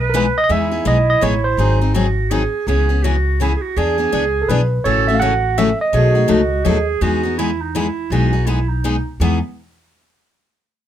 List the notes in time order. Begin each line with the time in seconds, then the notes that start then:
Already playing: B1
0.00 B4
0.10 A#4
0.14 E3 G#3 B3 D#4 G#4 B4
0.38 D#5
0.44 D#5
0.49 E2 E3 G#3 B3 D#4 E4 G#4 E5
0.71 B3 D#4 G#4
0.85 B1 E3 G#3 B3 D#4 G#4 D#5
1.10 D#5
1.21 A1 E3 G#3 B3 D#4 G#4 C#5
1.44 C5
1.57 G#1 D#3 F#3 C4 D#4 G#4
1.81 C4 D#4 G#4
1.94 D#3 F#3 C4 D#4 F#4 G#4
2.31 D#3 F#3 C4 D#4 G#4
2.67 C#2 C#3 E3 B3 C#4 G#4
2.89 B3 C#4 G#4
3.03 C#3 E3 B3 C#4 F#4 G#4
3.40 C#3 E3 B3 C#4 E4 G#4
3.57 G#4
3.62 F#4
3.77 E2 E3 B3 D4 G#4
3.98 B3 D4 G#4
4.12 C#2 E3 B3 D4 G#4
4.42 A4
4.48 B1 E3 B3 D4 G#4 B4
4.84 A1 C#3 E3 A3 C#4 F#4 A4 C#5
5.08 A3 C#4 F#4 E5
5.15 F5
5.20 C#3 E3 A3 C#4 F#4 F#5
5.58 C#3 E3 A3 C#4 F#4 E5
5.81 D#5
5.93 B1 B2 F#3 A3 D#4 F#4 G#4
6.15 A3 D#4 F#4
6.28 C#2 B2 F#3 A3 D#4 F#4
6.65 D#2 B2 F#3 A3 D#4 F#4 G#4
7.01 E2 E3 G#3 B3 D#4 F#4 G#4
7.23 B3 D#4 G#4
7.37 E3 G#3 B3 D#4 E4 G#4
7.61 D#4
7.75 E3 G#3 B3 D#4 E4 G#4
8.10 B1 E3 G#3 B3 D#4 F#4 G#4
8.33 B3 D#4 G#4
8.46 E3 G#3 B3 D#4 E4 G#4
8.69 D#4
8.84 E3 G#3 B3 D#4 G#4
9.20 E2 E3 G#3 B3 D#4 G#4